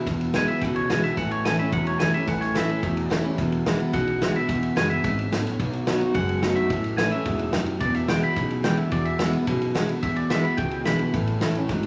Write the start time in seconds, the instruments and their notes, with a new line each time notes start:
0.06 upright bass E1, clean electric guitar E2 B2, steel-string acoustic guitar E2, kick, snare, ride
0.21 ride
0.34 clean electric guitar E2 B2 G#5, steel-string acoustic guitar E3 G#3 B3 E4, snare, ride
0.48 steel-string acoustic guitar B3 E4, clean electric guitar E5, ride
0.61 upright bass C#2, clean electric guitar E2 C#3 F#5, steel-string acoustic guitar B2, kick, ride
0.76 clean electric guitar C#5, ride
0.90 upright bass B1, clean electric guitar E2 D3 G#5, steel-string acoustic guitar E3 G#3 B3 E4, snare, ride
1.04 steel-string acoustic guitar B3 E4, clean electric guitar E5, snare, ride
1.17 upright bass A1, clean electric guitar A2 E3 F#5, steel-string acoustic guitar A2, kick, snare, ride
1.31 clean electric guitar C#5, ride
1.45 clean electric guitar A2 E3 G#5, steel-string acoustic guitar E3 A3 C#4 E4, snare, ride
1.59 steel-string acoustic guitar C#4 E4, clean electric guitar E5, ride
1.72 upright bass E1, steel-string acoustic guitar E2, clean electric guitar A2 F#3 F#5, kick, ride
1.87 clean electric guitar C#5, ride
1.99 clean electric guitar A2 G3 G#5, steel-string acoustic guitar E3 A3 C#4 E4, snare, ride
2.14 steel-string acoustic guitar C#4 E4, clean electric guitar E5, ride
2.27 upright bass A1, clean electric guitar A2 E3 F#5, steel-string acoustic guitar A2, kick, snare, ride
2.41 clean electric guitar C#5, snare, ride
2.54 clean electric guitar A2 E3 E5, steel-string acoustic guitar E3 A3 C#4 E4, snare, ride
2.69 steel-string acoustic guitar C#4 E4, ride
2.83 upright bass E1, steel-string acoustic guitar E2, clean electric guitar A2 F#3, kick, ride
2.97 ride
3.10 clean electric guitar A2 G3, steel-string acoustic guitar E3 A3 C#4 E4, snare, ride
3.24 steel-string acoustic guitar C#4 E4, ride
3.38 upright bass E1, steel-string acoustic guitar E2, clean electric guitar E2 B2, kick, snare, ride
3.52 ride
3.66 clean electric guitar E2 B2, steel-string acoustic guitar E3 G#3 B3 E4, snare, ride
3.79 steel-string acoustic guitar B3 E4, ride
3.93 upright bass B1, clean electric guitar E2 C#3 F#5, steel-string acoustic guitar B2, kick, snare, ride
4.07 ride
4.21 clean electric guitar E2 D3, steel-string acoustic guitar E3 G#3 B3 E4, snare, ride
4.35 steel-string acoustic guitar B3 E4, clean electric guitar E5, ride
4.48 upright bass E1, clean electric guitar E2 B2, steel-string acoustic guitar E2, kick, snare, ride
4.63 ride
4.76 upright bass F#1, clean electric guitar E2 B2 G#5, steel-string acoustic guitar E3 G#3 B3 E4, snare, ride
4.90 steel-string acoustic guitar B3 E4, clean electric guitar E5, ride
5.04 upright bass G#1, clean electric guitar E2 C#3, steel-string acoustic guitar G#2, kick, snare, ride
5.19 ride
5.31 upright bass A1, clean electric guitar E2 D3, steel-string acoustic guitar A2, snare, ride
5.47 snare, ride
5.60 upright bass B1, clean electric guitar B2 F#3, steel-string acoustic guitar B2, kick, ride
5.73 ride
5.87 clean electric guitar B2 F#3, steel-string acoustic guitar F#3 B3 D#4 F#4, snare, ride
6.01 steel-string acoustic guitar D#4 F#4, ride
6.14 upright bass F#1, steel-string acoustic guitar F#2, clean electric guitar B2 G#3 F#5, kick, ride
6.29 ride
6.42 clean electric guitar B2 A3, steel-string acoustic guitar F#3 B3 D#4 F#4, snare, ride
6.56 steel-string acoustic guitar D#4 F#4, clean electric guitar E5, ride
6.70 upright bass A1, clean electric guitar A2 E3, steel-string acoustic guitar A2, kick, ride
6.84 ride
6.97 clean electric guitar A2 E3 G#5, steel-string acoustic guitar E3 A3 C#4 E4, snare, ride
7.11 steel-string acoustic guitar C#4 E4, clean electric guitar E5, ride
7.25 upright bass E1, steel-string acoustic guitar G#2, clean electric guitar A2 F#3, kick, ride
7.39 ride
7.53 steel-string acoustic guitar F#2, clean electric guitar A2 G3, snare, ride
7.66 ride
7.80 upright bass E1, clean electric guitar E2 B2 D5, steel-string acoustic guitar E2, kick, ride
7.94 clean electric guitar E5, snare, ride
8.08 clean electric guitar E2 B2 G5, steel-string acoustic guitar E3 G#3 B3 E4, snare, ride
8.23 steel-string acoustic guitar B3 E4, clean electric guitar B5, ride
8.36 upright bass B1, clean electric guitar E2 C#3, steel-string acoustic guitar B2, kick, ride
8.50 ride
8.64 clean electric guitar E2 D3 G5, steel-string acoustic guitar E3 G#3 B3 E4, snare, ride
8.78 steel-string acoustic guitar B3 E4, clean electric guitar E5, ride
8.91 upright bass E1, clean electric guitar E2 B2 D5, steel-string acoustic guitar E2, kick, ride
9.05 clean electric guitar E5, ride
9.19 clean electric guitar E2 B2, steel-string acoustic guitar E3 G#3 B3 E4, snare, ride
9.33 steel-string acoustic guitar B3 E4, ride
9.46 upright bass B1, clean electric guitar E2 C#3, steel-string acoustic guitar B2, kick, ride
9.62 ride
9.75 clean electric guitar E2 D3, steel-string acoustic guitar E3 G#3 B3 E4, snare, ride
9.89 steel-string acoustic guitar B3 E4, ride
10.03 upright bass E2, steel-string acoustic guitar E2, clean electric guitar E2 B2 E5, kick, ride
10.16 clean electric guitar D5, ride
10.30 clean electric guitar E2 B2 E5, steel-string acoustic guitar E3 G#3 B3 E4, snare, ride
10.44 steel-string acoustic guitar B3 E4, clean electric guitar B5, ride
10.57 upright bass C#2, clean electric guitar E2 C#3 G5, steel-string acoustic guitar B2, kick, ride
10.71 ride
10.85 upright bass B1, clean electric guitar E2 D3 B5, steel-string acoustic guitar E3 G#3 B3 E4, snare, ride
10.99 steel-string acoustic guitar B3 E4, ride
11.14 upright bass A1, clean electric guitar A2 E3, steel-string acoustic guitar A2, kick, ride
11.27 ride
11.41 upright bass A1, clean electric guitar A2 E3, steel-string acoustic guitar E3 A3 C#4 E4, snare, ride
11.55 steel-string acoustic guitar C#4 E4, ride
11.69 upright bass G#1, steel-string acoustic guitar G#2, clean electric guitar A2 F#3, kick, snare, ride
11.83 ride